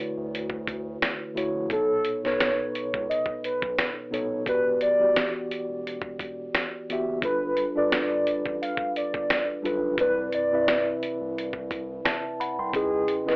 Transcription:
0.00 1.34 D3 medium
0.00 1.35 A3 medium
0.00 1.36 E4 medium
0.00 1.37 F#4 medium
0.00 0.58 B4 medium
0.00 1.38 C#5 medium
0.17 0.97 D2 medium
0.35 closed hi-hat medium
0.50 kick medium
0.67 kick medium
0.67 closed hi-hat medium
1.02 finger snap medium
1.02 snare loud
1.02 closed hi-hat medium
1.34 1.63 D3 medium
1.34 1.64 A3 medium
1.34 1.64 E4 medium
1.34 1.65 F#4 medium
1.34 1.65 C#5 medium
1.34 closed hi-hat medium
1.55 1.69 A#1 medium
1.70 2.02 B1 loud
1.70 2.12 B2 medium
1.70 2.12 B3 medium
1.70 2.13 D#4 medium
1.70 2.21 A4 loud
1.70 2.13 A4 medium
1.70 2.14 C#5 medium
1.70 kick loud
1.70 closed hi-hat medium
2.05 closed hi-hat medium
2.23 3.33 B2 medium
2.23 3.33 B3 medium
2.23 3.33 D#4 medium
2.23 3.34 A4 medium
2.23 3.34 B4 medium
2.23 3.11 C#5 medium
2.23 snare soft
2.40 finger snap medium
2.40 snare loud
2.40 closed hi-hat medium
2.75 closed hi-hat medium
2.94 3.08 C#2 medium
2.94 kick medium
3.09 3.40 D#5 medium
3.09 closed hi-hat medium
3.26 kick medium
3.44 3.94 B4 medium
3.44 closed hi-hat medium
3.62 3.77 B1 medium
3.62 kick medium
3.79 finger snap medium
3.79 snare loud
3.79 closed hi-hat medium
4.10 4.44 D#1 medium
4.10 4.39 B2 medium
4.10 4.40 B3 medium
4.10 4.40 D#4 medium
4.10 4.41 A4 medium
4.10 4.41 C#5 medium
4.10 closed hi-hat medium
4.45 4.78 E1 loud
4.45 4.88 E3 medium
4.45 4.88 B3 medium
4.45 4.88 F#4 medium
4.45 4.89 G4 medium
4.45 4.78 B4 loud
4.45 4.89 D5 medium
4.45 kick loud
4.45 closed hi-hat medium
4.81 5.32 D5 medium
4.81 closed hi-hat medium
4.99 6.09 E3 medium
4.99 6.09 B3 medium
4.99 6.09 F#4 medium
4.99 6.10 G4 medium
4.99 6.10 D5 medium
5.16 finger snap medium
5.16 snare loud
5.16 closed hi-hat medium
5.52 closed hi-hat medium
5.69 6.49 E1 medium
5.87 closed hi-hat medium
6.02 kick medium
6.20 kick medium
6.20 closed hi-hat medium
6.55 finger snap medium
6.55 snare loud
6.55 closed hi-hat medium
6.89 7.17 E3 medium
6.89 7.17 B3 medium
6.89 7.17 F#4 medium
6.89 7.18 G4 medium
6.89 7.18 E5 medium
6.89 closed hi-hat medium
7.07 7.21 F#1 medium
7.21 7.54 G1 medium
7.21 7.64 G3 medium
7.21 7.64 D4 medium
7.21 7.64 F4 medium
7.21 7.65 A4 medium
7.21 7.73 B4 loud
7.21 7.65 B4 medium
7.21 kick loud
7.21 closed hi-hat medium
7.57 closed hi-hat medium
7.75 8.84 G3 medium
7.75 8.85 D4 medium
7.75 8.85 F4 medium
7.75 8.86 A4 medium
7.75 8.86 B4 medium
7.75 8.57 D5 medium
7.92 finger snap medium
7.92 snare loud
7.92 closed hi-hat medium
8.27 closed hi-hat medium
8.46 8.60 A1 loud
8.46 kick medium
8.62 8.92 F5 medium
8.62 closed hi-hat medium
8.77 kick medium
8.96 9.46 D5 medium
8.96 closed hi-hat medium
9.14 9.28 G1 medium
9.14 kick medium
9.30 finger snap medium
9.30 snare loud
9.30 closed hi-hat medium
9.62 9.96 B1 medium
9.62 9.91 G3 medium
9.62 9.92 D4 medium
9.62 9.92 F4 medium
9.62 9.92 A4 medium
9.62 9.93 B4 medium
9.62 closed hi-hat medium
9.97 10.30 C2 loud
9.97 10.39 C3 medium
9.97 10.40 C4 medium
9.97 10.40 E4 medium
9.97 10.41 B4 medium
9.97 10.30 B4 loud
9.97 10.41 D5 medium
9.97 kick loud
9.97 closed hi-hat medium
10.32 10.84 D5 medium
10.32 closed hi-hat medium
10.51 11.60 C3 medium
10.51 11.61 C4 medium
10.51 11.61 E4 medium
10.51 11.62 B4 medium
10.51 11.62 E5 medium
10.68 finger snap medium
10.68 snare loud
10.68 closed hi-hat medium
11.03 closed hi-hat medium
11.21 12.01 C2 loud
11.38 closed hi-hat medium
11.53 kick medium
11.71 kick medium
11.71 closed hi-hat medium
12.05 12.38 E5 soft
12.05 12.38 A5 medium
12.05 finger snap medium
12.05 snare loud
12.05 closed hi-hat medium
12.40 12.58 F#5 medium
12.40 12.58 B5 medium
12.40 closed hi-hat medium
12.59 12.73 C2 medium
12.59 12.92 G5 medium
12.59 12.92 C6 medium
12.73 13.06 C#2 loud
12.73 13.15 C#3 medium
12.73 13.16 C#4 medium
12.73 13.16 E4 medium
12.73 13.25 G#4 loud
12.73 13.16 B4 medium
12.73 13.17 D#5 medium
12.73 kick loud
12.73 closed hi-hat medium
13.08 closed hi-hat medium
13.24 13.36 C#3 medium
13.24 13.36 C#4 medium
13.24 13.36 E4 medium
13.24 13.36 B4 medium
13.24 13.36 D#5 medium
13.28 13.36 B4 medium
13.28 snare soft

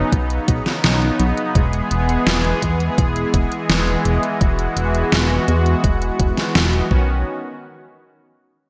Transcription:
0.00 1.51 C#3 medium
0.00 1.51 F#3 medium
0.00 6.87 B3 medium
0.00 1.51 D#4 medium
0.12 0.40 B1 medium
0.12 kick loud
0.12 closed hi-hat medium
0.30 closed hi-hat soft
0.48 0.62 B1 medium
0.48 kick loud
0.48 closed hi-hat loud
0.66 snare soft
0.66 closed hi-hat soft
0.84 1.11 B1 medium
0.84 snare loud
0.84 closed hi-hat medium
1.02 closed hi-hat soft
1.19 1.33 B1 medium
1.19 closed hi-hat loud
1.37 closed hi-hat soft
1.55 1.82 E1 loud
1.55 6.87 E3 medium
1.55 6.87 G#3 medium
1.55 4.38 G#4 loud
1.55 kick loud
1.55 closed hi-hat medium
1.73 closed hi-hat soft
1.91 2.18 E1 medium
1.91 closed hi-hat medium
2.09 closed hi-hat soft
2.27 2.54 E1 loud
2.27 snare loud
2.27 closed hi-hat medium
2.45 closed hi-hat soft
2.62 2.90 E2 loud
2.62 kick medium
2.62 closed hi-hat medium
2.80 closed hi-hat soft
2.98 3.25 E1 medium
2.98 kick loud
2.98 closed hi-hat medium
3.16 closed hi-hat soft
3.34 3.47 E1 medium
3.34 kick loud
3.34 closed hi-hat loud
3.52 closed hi-hat soft
3.69 3.97 E1 medium
3.69 snare loud
3.69 closed hi-hat medium
3.87 closed hi-hat soft
4.05 4.19 E1 loud
4.05 closed hi-hat loud
4.23 closed hi-hat soft
4.41 4.68 E1 loud
4.41 6.88 F#4 medium
4.41 kick loud
4.41 closed hi-hat medium
4.59 closed hi-hat soft
4.77 5.04 E1 medium
4.77 closed hi-hat medium
4.95 closed hi-hat soft
5.12 5.39 E1 medium
5.12 snare loud
5.12 closed hi-hat medium
5.30 closed hi-hat soft
5.48 5.75 E2 loud
5.48 closed hi-hat medium
5.66 closed hi-hat soft
5.84 6.11 E1 medium
5.84 kick loud
5.84 closed hi-hat medium
6.02 closed hi-hat soft
6.20 6.33 E1 medium
6.20 kick loud
6.20 closed hi-hat loud
6.37 snare soft
6.37 closed hi-hat soft
6.55 6.82 E1 loud
6.55 snare loud
6.55 closed hi-hat medium
6.73 closed hi-hat soft
6.91 7.24 B1 medium
6.91 7.24 D#3 medium
6.91 7.24 B3 medium
6.91 7.24 C#4 medium
6.91 7.24 F#4 medium
6.91 kick loud

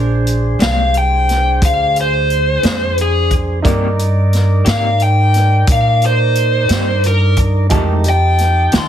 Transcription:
0.00 0.56 A#1 medium
0.00 3.59 D4 soft
0.00 3.60 D4 medium
0.00 3.60 G#4 medium
0.00 3.60 G#4 soft
0.00 3.60 C5 medium
0.27 closed hi-hat soft
0.59 1.58 C2 medium
0.59 0.81 A#2 soft
0.59 0.80 G#3 medium
0.59 0.80 C4 medium
0.59 0.80 D4 medium
0.59 0.94 F5 medium
0.59 snare loud
0.59 closed hi-hat medium
0.94 1.61 G5 medium
0.94 closed hi-hat soft
1.29 snare soft
1.29 closed hi-hat soft
1.62 2.60 D2 medium
1.62 1.96 F5 medium
1.62 kick loud
1.62 closed hi-hat medium
1.96 closed hi-hat medium
2.01 2.96 C5 medium
2.30 closed hi-hat soft
2.63 3.62 F2 medium
2.63 2.84 A#2 soft
2.63 2.84 G#3 medium
2.63 2.83 C4 medium
2.63 2.83 D4 medium
2.63 snare loud
2.63 closed hi-hat medium
2.98 3.32 G#4 medium
2.98 closed hi-hat medium
3.31 kick medium
3.31 closed hi-hat soft
3.62 4.63 G2 medium
3.62 3.85 C3 medium
3.62 3.85 A#3 medium
3.62 7.66 D#4 medium
3.62 7.67 D#4 medium
3.62 3.85 D#4 medium
3.62 3.85 G4 medium
3.62 7.67 A#4 soft
3.62 7.67 A#4 medium
3.62 7.67 D5 medium
3.62 kick medium
3.62 closed hi-hat medium
3.99 closed hi-hat medium
4.33 snare soft
4.33 closed hi-hat soft
4.65 5.65 G#2 medium
4.65 4.87 C3 medium
4.65 4.86 A#3 medium
4.65 4.86 D#4 medium
4.65 4.86 G4 medium
4.65 snare medium
4.65 closed hi-hat medium
4.69 5.00 F5 medium
5.00 5.67 G5 medium
5.00 closed hi-hat medium
5.34 snare soft
5.34 closed hi-hat medium
5.67 6.66 A#2 medium
5.67 kick loud
5.67 closed hi-hat medium
5.72 6.03 F5 medium
6.02 closed hi-hat medium
6.06 7.02 C5 medium
6.35 closed hi-hat medium
6.68 7.68 G2 medium
6.68 6.90 C3 soft
6.68 6.90 A#3 medium
6.68 6.90 D#4 medium
6.68 6.89 G4 medium
6.68 snare medium
6.68 closed hi-hat medium
7.04 7.38 A#4 medium
7.04 closed hi-hat medium
7.37 kick medium
7.37 closed hi-hat medium
7.70 8.70 F2 medium
7.70 8.06 E3 medium
7.70 7.91 F3 medium
7.70 8.06 G#3 medium
7.70 7.92 A3 medium
7.70 8.88 D#4 medium
7.70 7.92 D#4 medium
7.70 8.88 G4 soft
7.70 7.92 G4 medium
7.70 8.06 A#4 medium
7.70 8.88 A5 medium
7.70 kick medium
7.70 closed hi-hat medium
8.04 8.88 D#4 medium
8.04 8.88 G4 medium
8.04 8.88 A5 medium
8.04 closed hi-hat medium
8.09 8.73 G5 medium
8.38 snare soft
8.38 closed hi-hat soft
8.72 8.88 D#2 medium
8.72 8.88 F3 medium
8.72 8.88 A3 medium
8.72 8.88 D#4 medium
8.72 8.88 G4 medium
8.72 snare loud
8.72 closed hi-hat medium
8.78 8.88 C6 medium

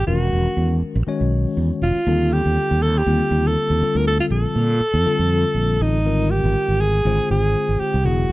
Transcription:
0.07 0.31 E1 medium
0.07 0.98 D#3 medium
0.07 0.98 G#3 soft
0.07 0.98 C#4 medium
0.07 0.78 F#4 medium
0.07 0.98 F#4 medium
0.07 0.98 A#4 medium
0.33 0.46 E1 medium
0.57 0.81 E2 medium
0.82 muted fretless electric bass stroke soft
0.95 1.06 B1 medium
1.07 1.98 D#3 medium
1.07 1.98 G#3 medium
1.07 1.98 C#4 medium
1.07 1.99 F#4 medium
1.07 1.99 C#5 medium
1.07 muted fretless electric bass stroke soft
1.21 1.44 B1 medium
1.57 1.70 E2 medium
1.82 1.95 E1 medium
1.82 2.34 F4 medium
1.96 muted fretless electric bass stroke soft
2.07 2.44 D#2 medium
2.07 2.98 D3 medium
2.07 2.98 G3 soft
2.07 2.98 C4 soft
2.07 2.98 F4 soft
2.07 2.98 A4 medium
2.33 2.84 G4 medium
2.46 2.56 D#2 medium
2.71 3.05 D#2 medium
2.82 2.99 A4 medium
2.98 3.49 G4 medium
3.06 3.20 D#2 medium
3.06 3.81 D3 medium
3.06 3.81 G3 medium
3.06 3.82 A#3 medium
3.06 3.81 C4 medium
3.06 3.82 F4 medium
3.31 3.55 D#2 medium
3.47 3.98 A4 medium
3.70 3.81 D#2 medium
3.82 4.72 D3 medium
3.82 4.72 G3 medium
3.82 4.73 C4 medium
3.82 4.73 F4 medium
3.82 4.73 A4 medium
3.82 muted fretless electric bass stroke soft
3.95 4.19 D2 medium
3.95 4.07 A#4 medium
4.07 4.20 A4 medium
4.20 4.25 F4 medium
4.30 4.44 A#1 medium
4.30 5.84 A4 loud
4.56 4.80 A#2 medium
4.80 muted fretless electric bass stroke soft
4.94 5.05 F2 medium
5.05 5.96 D3 medium
5.05 5.97 G3 medium
5.05 5.97 C4 medium
5.05 5.97 F4 medium
5.05 5.97 A4 medium
5.05 muted fretless electric bass stroke soft
5.19 5.43 F2 medium
5.54 5.78 A#1 medium
5.80 6.05 A1 medium
5.80 6.32 D#4 medium
6.05 6.42 G#1 medium
6.05 6.96 D3 medium
6.05 6.96 G3 medium
6.05 6.96 C4 soft
6.05 6.97 F4 soft
6.05 6.97 A#4 medium
6.31 6.82 G4 medium
6.44 6.55 G#1 medium
6.68 7.03 G#1 medium
6.81 7.30 G#4 loud
7.05 7.18 G#1 medium
7.05 7.96 D3 medium
7.05 7.96 G#3 medium
7.05 7.96 C4 medium
7.05 7.96 F4 medium
7.05 7.97 C5 medium
7.30 7.54 G#1 medium
7.30 7.81 G#4 medium
7.69 7.79 G#1 medium
7.80 8.07 G4 medium
7.80 muted fretless electric bass stroke soft
7.94 8.04 C2 medium
8.04 8.29 E1 medium
8.04 8.32 C#3 medium
8.04 8.32 F#3 medium
8.04 8.32 B3 medium
8.04 8.32 E4 medium
8.04 8.32 F#4 medium
8.04 8.32 G#4 medium

